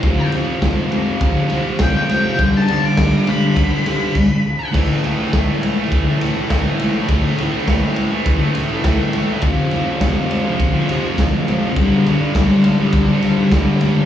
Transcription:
<<
  \new Staff \with { instrumentName = "Lead electric guitar" } { \time 4/4 \key a \minor \tempo 4 = 102 c'''8 r2 r8 g''16 g''8.~ | g''16 a''8 d'''8. b''2~ b''8 | r1 | r1 |
r1 | r1 | }
  \new Staff \with { instrumentName = "Distorted electric guitar" } { \clef bass \time 4/4 \key a \minor <f, c f>8 <f, c f>8 <f, c f>8 <f, c f>8 <f, c f>8 <f, c f>8 <f, c f>8 <f, c f>8 | <g, d g>8 <g, d g>8 <g, d g>8 <g, d g>8 <g, d g>8 <g, d g>8 r4 | <a, e a>8 <a, e a>16 <e a>16 <a, e a>16 <e a>8 <e a>8 <e a>16 <a, e a>16 <e a>16 <a, e a>8 <a, e a>16 <e a>16 | <a, e a>8 <a, e a>16 <e a>16 <a, e a>16 <e a>8 <e a>8 <e a>16 <a, e a>16 <e a>16 <a, e a>8 <a, e a>16 <e a>16 |
<f, c f>8 <f, c f>16 <c f>16 <f, c f>16 <c f>8 <c f>8 <c f>16 <f, c f>16 <c f>16 <f, c f>8 <f, c f>16 <c f>16 | <g, d g>8 <g, d g>16 <d g>16 <g, d g>16 <d g>8 <d g>8 <d g>16 <g, d g>16 <d g>16 <g, d g>8 <g, d g>16 <d g>16 | }
  \new DrumStaff \with { instrumentName = "Drums" } \drummode { \time 4/4 <bd cymr>8 cymr8 <bd cymr sn>8 cymr8 <bd cymr>8 cymr8 <bd cymr sn>8 cymr8 | <bd cymr>8 cymr8 <bd cymr sn>8 cymr8 <bd cymr>8 cymr8 <cymc bd>4 | <cymc bd>8 cymr8 <bd cymr sn>8 cymr8 <bd cymr>8 cymr8 <bd cymr sn>8 cymr8 | <bd cymr>8 cymr8 <bd cymr sn>8 cymr8 <bd cymr>8 cymr8 <bd cymr sn>8 cymr8 |
<bd cymr>8 cymr8 <bd cymr sn>8 cymr8 <bd cymr>8 cymr8 <bd cymr sn>8 cymr8 | <bd cymr>8 cymr8 <bd cymr sn>8 cymr8 <bd cymr>8 cymr8 <bd cymr sn>8 cymr8 | }
>>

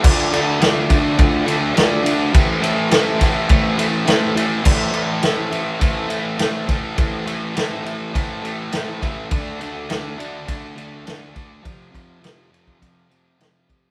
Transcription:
<<
  \new Staff \with { instrumentName = "Transistor combo organ" } { \time 4/4 \key a \minor \tempo 4 = 103 <f' a' d''>8 r8 <f' a' d''>8 r8 <f' a' d''>8 r8 <f' a' d''>8 r8 | <e' a' c''>8 r8 <e' a' c''>8 r8 <e' a' c''>8 r8 <e' a' c''>8 r8 | <e' a' c''>8 r8 <e' a' c''>8 r8 <e' a' c''>8 r8 <e' a' c''>8 r8 | <e' a' c''>8 r8 <e' a' c''>8 r8 <e' a' c''>8 r8 <e' a' c''>8 r8 |
r1 | r1 | }
  \new Staff \with { instrumentName = "Distorted electric guitar" } { \clef bass \time 4/4 \key a \minor <d a d'>8 <d a d'>8 <d a d'>8 <d a d'>8 <d a d'>8 <d a d'>8 <d a d'>8 <d a d'>8 | <a, e a>8 <a, e a>8 <a, e a>8 <a, e a>8 <a, e a>8 <a, e a>8 <a, e a>8 <a, e a>8 | <a, e a>8 <a, e a>8 <a, e a>8 <a, e a>8 <a, e a>8 <a, e a>8 <a, e a>8 <a, e a>8 | <a, e a>8 <a, e a>8 <a, e a>8 <a, e a>8 <a, e a>8 <a, e a>8 <a, e a>8 <a, e a>8 |
<d a d'>8 <d a d'>8 <d a d'>8 <d a d'>8 <d a d'>8 <d a d'>8 <d a d'>8 <d a d'>8 | <f, c f>8 <f, c f>8 <f, c f>8 <f, c f>8 <f, c f>8 <f, c f>8 <f, c f>8 <f, c f>8 | }
  \new DrumStaff \with { instrumentName = "Drums" } \drummode { \time 4/4 <cymc bd>8 cymr8 <cymr sn>8 <bd cymr>8 <bd cymr>8 cymr8 <cymr sn>8 cymr8 | <bd cymr>8 cymr8 <cymr sn>8 <bd cymr>8 <bd cymr>8 cymr8 <cymr sn>8 cymr8 | <cymc bd>8 cymr8 <cymr sn>8 cymr8 <bd cymr>8 cymr8 <cymr sn>8 <bd cymr>8 | <bd cymr>8 cymr8 <cymr sn>8 cymr8 <bd cymr>8 cymr8 <cymr sn>8 <bd cymr>8 |
<bd cymr>8 cymr8 <cymr sn>8 cymr8 <bd cymr>8 cymr8 <cymr sn>8 <bd cymr>8 | <bd cymr>8 <bd cymr>8 <cymr sn>8 cymr16 bd16 <bd cymr>8 cymr8 <cymr sn>8 <bd cymr>8 | }
>>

